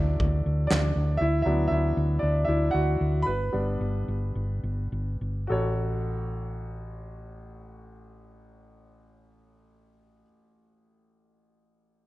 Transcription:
Already playing: D2 F#3 A3 D4 E4 F#4 D5 E5 F#5
0.20 D2, kick
0.46 D2
0.67 D2 D5, snare
0.71 D4, clap
0.96 D2
1.17 D2 E4 E5
1.42 D2 F#3 B3 D4 E5
1.47 E4
1.68 D2 E5
1.72 E4
1.97 D2
2.19 D2 D4 D5
2.45 D2 E5
2.49 E4
2.71 D2 F#4 F#5
3.01 D2
3.22 B4 B5
3.27 G1
3.52 G1 G3 B3 D4
3.81 G1
4.08 G1
4.35 G1
4.63 G1
4.92 G1
5.21 G1
5.47 A1 F#4 A4
5.52 C#5

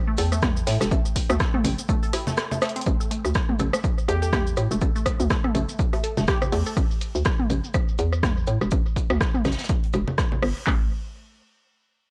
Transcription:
Already playing: G5
0.07 A3
0.17 E2 A4, open hi-hat, shaker
0.32 A3, cross-stick, shaker
0.42 kick, cross-stick, snare, high tom, shaker
0.57 shaker
0.67 A2 A3, snare, open hi-hat, shaker
0.80 E1 A4, cross-stick, snare, cowbell, shaker
0.91 A1 A3, kick, shaker
1.05 shaker
1.16 kick, open hi-hat, shaker
1.30 D2 A3, cross-stick, high tom, shaker
1.40 A4, kick, cross-stick, snare, shaker
1.54 A3, high tom
1.64 A1, open hi-hat, low conga, shaker
1.79 shaker
1.89 A3, kick, shaker
2.03 A4, closed hi-hat, shaker
2.13 E4, cross-stick, open hi-hat, cowbell, shaker
2.27 A3, snare, low conga, shaker
2.37 cross-stick, snare, shaker
2.51 A3, low conga, shaker
2.62 A3, cross-stick, snare, closed hi-hat, shaker
2.69 closed hi-hat
2.76 C4, closed hi-hat
2.81 closed hi-hat
2.86 A1 A3, kick, shaker
3.00 A4, shaker
3.11 A3, open hi-hat, shaker
3.25 D2, cross-stick, cowbell, shaker
3.35 kick, cross-stick, snare, shaker
3.49 A3, high tom
3.59 A1 A4, open hi-hat, low conga, shaker
3.73 A3, cross-stick, shaker
3.84 kick, shaker
3.98 shaker
4.08 E2 A3 G4, cross-stick, open hi-hat, shaker
4.22 G4 A4, shaker
4.33 A3 G4, kick, cross-stick, snare, high tom, shaker
4.47 shaker
4.57 A2, cross-stick, open hi-hat, cowbell, shaker
4.71 E1 A3, shaker
4.81 A1 A4, kick, shaker
4.96 A3, shaker
5.06 kick, cross-stick, open hi-hat, shaker
5.20 D2, high tom, shaker
5.30 A3, kick, cross-stick, snare, shaker
5.44 A4, cross-stick, high tom
5.55 A1 A3, open hi-hat, low conga, shaker
5.69 shaker
5.79 kick, shaker
5.93 A3, cross-stick, closed hi-hat, cowbell, shaker
6.04 A4, open hi-hat, shaker
6.17 E1 A3, snare, low conga, shaker
6.28 G4, kick, cross-stick, snare, shaker
6.42 cross-stick, low conga, shaker
6.52 E2 A3, open hi-hat
6.66 A4, shaker
6.77 A1, kick, cross-stick, shaker
6.91 shaker
7.01 open hi-hat, shaker
7.15 D2, shaker
7.25 kick, cross-stick, snare, cowbell, shaker
7.39 high tom
7.50 A1, open hi-hat, low conga, shaker
7.64 shaker
7.74 kick, cross-stick, shaker
7.88 shaker
7.98 E2, open hi-hat, shaker
8.13 cross-stick, shaker
8.23 kick, cross-stick, snare, high tom, shaker
8.37 shaker
8.47 A2, open hi-hat, shaker
8.61 E1, cross-stick, cowbell, shaker
8.71 A1, kick, shaker
8.86 shaker
8.96 kick, open hi-hat, shaker
9.10 D2, cross-stick, high tom, shaker
9.21 kick, cross-stick, snare, shaker
9.34 high tom, shaker
9.45 A1, cross-stick, snare, open hi-hat, low conga, shaker
9.52 snare, shaker
9.59 snare, shaker
9.64 snare, shaker
9.69 kick, shaker
9.83 closed hi-hat, shaker
9.93 E1, cross-stick, open hi-hat, cowbell, shaker
10.08 low conga, shaker
10.18 kick, cross-stick, snare, shaker
10.32 low conga, shaker
10.42 G1, cross-stick, open hi-hat
10.56 shaker
10.67 A1 A3, kick, clap

